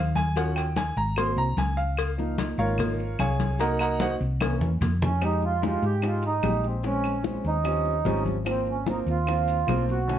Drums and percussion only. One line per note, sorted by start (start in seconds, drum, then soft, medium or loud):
0.15 cowbell medium
0.15 high conga medium
0.15 maracas soft
0.36 cowbell loud
0.36 high conga soft
0.36 maracas medium
0.56 cowbell medium
0.56 high conga soft
0.56 claves medium
0.56 maracas soft
0.76 cowbell medium
0.76 high conga loud
0.76 maracas medium
0.97 high conga soft
0.97 maracas soft
1.16 cowbell loud
1.16 high conga soft
1.16 claves medium
1.16 maracas medium
1.37 high conga soft
1.37 maracas soft
1.57 cowbell medium
1.57 high conga medium
1.57 maracas medium
1.78 maracas soft
1.97 cowbell loud
1.97 high conga soft
1.97 claves medium
1.97 maracas medium
2.18 high conga soft
2.18 maracas soft
2.38 cowbell medium
2.38 high conga loud
2.38 maracas medium
2.59 high conga soft
2.59 maracas soft
2.78 cowbell loud
2.78 high conga soft
2.78 low conga medium
2.78 claves medium
2.78 maracas medium
2.99 high conga soft
2.99 maracas soft
3.19 cowbell medium
3.19 high conga medium
3.19 claves medium
3.19 maracas medium
3.40 cowbell medium
3.40 high conga medium
3.40 maracas soft
3.59 cowbell loud
3.59 high conga soft
3.59 maracas medium
3.79 cowbell medium
3.79 high conga soft
3.79 claves medium
3.79 maracas soft
4.00 cowbell medium
4.00 high conga loud
4.00 maracas medium
4.20 high conga soft
4.20 maracas soft
4.41 cowbell loud
4.41 high conga loud
4.41 claves medium
4.41 maracas medium
4.61 low conga medium
4.61 maracas soft
4.81 cowbell medium
4.81 low conga loud
4.81 maracas medium
5.02 low conga loud
5.02 maracas soft
5.22 high bongo medium
5.22 high conga soft
5.22 claves medium
5.22 maracas medium
5.42 high bongo soft
5.42 high conga soft
5.63 high bongo medium
5.63 high conga loud
5.63 maracas medium
5.83 high conga soft
5.83 maracas soft
6.02 high bongo medium
6.02 high conga soft
6.02 claves medium
6.02 maracas medium
6.22 high bongo soft
6.22 high conga soft
6.22 maracas medium
6.42 high bongo soft
6.42 low bongo medium
6.42 high conga medium
6.42 claves medium
6.42 maracas medium
6.63 high bongo soft
6.63 high conga soft
6.63 maracas soft
6.83 high bongo medium
6.83 high conga soft
6.83 maracas medium
7.03 high bongo soft
7.03 high conga soft
7.03 claves medium
7.03 maracas medium
7.24 high bongo medium
7.24 high conga medium
7.24 maracas medium
7.44 high conga soft
7.44 maracas soft
7.65 high bongo medium
7.65 high conga soft
7.65 claves medium
7.65 maracas medium
7.85 high bongo soft
7.85 high conga soft
8.05 high bongo soft
8.05 low bongo medium
8.05 high conga medium
8.05 maracas medium
8.26 high bongo soft
8.26 high conga medium
8.26 maracas soft
8.46 high bongo medium
8.46 claves medium
8.46 maracas medium
8.66 high bongo soft
8.66 high conga soft
8.87 high bongo medium
8.87 high conga medium
8.87 maracas medium
9.07 high conga soft
9.07 maracas soft
9.27 high bongo medium
9.27 high conga soft
9.27 claves medium
9.27 maracas medium
9.48 high bongo soft
9.48 high conga soft
9.48 maracas medium
9.68 high bongo soft
9.68 low bongo medium
9.68 high conga medium
9.68 claves medium
9.68 maracas medium
9.88 high bongo soft
9.88 high conga soft
9.88 maracas soft
10.09 high bongo medium
10.09 high conga soft
10.09 maracas medium